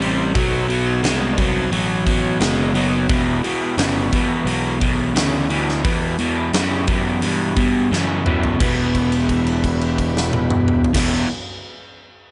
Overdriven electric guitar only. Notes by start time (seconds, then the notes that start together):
0.00 C3 G3
0.34 B2 F#3
0.69 B2 F#3
1.03 B2 G#3
1.37 B2 F#3
1.72 B2 F#3
2.06 B2 F#3
2.40 B2 G#3
2.74 B2 F#3
3.09 E2 B2
3.43 E2 B2
3.77 E2 C#3
4.12 E2 B2
4.46 E2 B2
4.80 E2 B2
5.15 E2 C#3
5.50 E2 B2
5.83 E2 B2
6.19 E2 B2
6.53 E2 C#3
6.87 E2 B2
7.22 E2 B2
7.57 E2 B2
7.91 E2 C#3
8.26 E2 B2
8.59 E2 B2
8.63 E3
10.93 E2 B2 E3